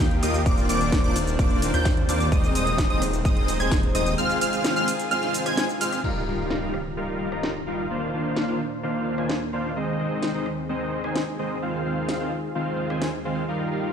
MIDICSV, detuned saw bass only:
0, 0, Header, 1, 2, 480
1, 0, Start_track
1, 0, Key_signature, -3, "major"
1, 0, Tempo, 465116
1, 475, Time_signature, 4, 2, 24, 8
1, 14374, End_track
2, 0, Start_track
2, 0, Title_t, "Detuned saw bass"
2, 0, Program_c, 0, 39
2, 0, Note_on_c, 0, 39, 97
2, 210, Note_off_c, 0, 39, 0
2, 233, Note_on_c, 0, 39, 101
2, 450, Note_off_c, 0, 39, 0
2, 474, Note_on_c, 0, 27, 98
2, 690, Note_off_c, 0, 27, 0
2, 714, Note_on_c, 0, 27, 101
2, 1050, Note_off_c, 0, 27, 0
2, 1075, Note_on_c, 0, 27, 98
2, 1411, Note_off_c, 0, 27, 0
2, 1434, Note_on_c, 0, 27, 97
2, 1770, Note_off_c, 0, 27, 0
2, 1794, Note_on_c, 0, 39, 99
2, 2130, Note_off_c, 0, 39, 0
2, 2154, Note_on_c, 0, 39, 101
2, 2370, Note_off_c, 0, 39, 0
2, 2394, Note_on_c, 0, 27, 100
2, 2610, Note_off_c, 0, 27, 0
2, 2634, Note_on_c, 0, 27, 97
2, 2970, Note_off_c, 0, 27, 0
2, 2995, Note_on_c, 0, 27, 98
2, 3330, Note_off_c, 0, 27, 0
2, 3354, Note_on_c, 0, 27, 97
2, 3690, Note_off_c, 0, 27, 0
2, 3715, Note_on_c, 0, 27, 95
2, 4050, Note_off_c, 0, 27, 0
2, 4074, Note_on_c, 0, 27, 100
2, 4290, Note_off_c, 0, 27, 0
2, 14374, End_track
0, 0, End_of_file